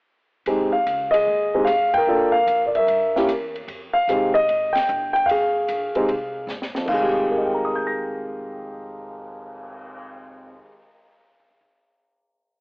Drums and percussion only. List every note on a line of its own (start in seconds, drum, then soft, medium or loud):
0.46 ride medium
0.86 hi-hat pedal soft
0.86 ride medium
1.14 ride medium
1.67 hi-hat pedal medium
1.67 ride medium
1.94 kick medium
1.94 ride medium
2.48 hi-hat pedal soft
2.48 ride medium
2.75 ride soft
2.88 ride medium
3.16 snare soft
3.29 hi-hat pedal medium
3.29 ride medium
3.56 ride soft
3.68 ride medium
4.09 hi-hat pedal soft
4.09 ride medium
4.35 kick soft
4.35 ride soft
4.49 ride soft
4.75 snare medium
4.75 ride medium
4.88 hi-hat pedal medium
5.16 ride soft
5.29 ride medium
5.68 hi-hat pedal soft
5.68 ride medium
5.95 ride soft
6.09 ride soft
6.48 snare soft
6.48 hi-hat pedal medium
6.62 snare soft
6.75 snare medium
6.88 kick soft
6.88 crash medium
7.15 cymbal swell soft